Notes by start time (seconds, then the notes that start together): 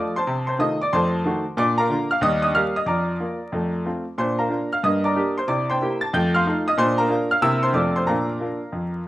Already playing: F3 A3 F4 D5 D6
0.16 C5 A5 C6
0.27 C3
0.47 C5 C6
0.59 D#3 A3 F4 D#5 D#6
0.81 D5 D6
0.93 F2 A3 C5 A5 C6
1.25 D#3 A3 F#4
1.57 A#2 D4 D5 D6
1.78 A#4 F5 A#5
1.90 D3 A#3 F4
2.11 F5 F6
2.21 D#2 G3 D#5 D#6
2.42 D#5 D#6
2.54 G3 A#3 G4 F5 F6
2.76 D#5 D#6
2.86 F2 D5 A#5 D6
3.20 A#3 F4
3.52 F2 A3
3.86 A3 C4 F4
4.18 A#2 D4 C5 C6
4.39 A#4 F5 A#5
4.49 A#3 D4 F4
4.73 F5 F6
4.83 G2 A#3 D#5 D#6
5.04 D5 A#5 D6
5.16 A#3 D4 G4
5.38 C5 C6
5.48 C3 E4 D5 D6
5.70 C5 G5 C6
5.82 A#3 E4 G4
6.01 A5 A6
6.13 F2 A3 G5 G6
6.34 F5 C6 F6
6.47 A3 D#4 F4
6.68 D#5 D#6
6.77 A#2 D4 C5 C6
6.98 A#4 F5 A#5
7.09 A#3 D4 F4
7.31 F5 F6
7.42 C3 A#3 C4 E4 E5 E6
7.63 C5 C6
7.73 F2 A3 C4 F4 D5 D6
7.96 C5 C6
8.07 A#2 D4 A#4 F5 A#5
8.40 A#3 D4 F4
8.72 F2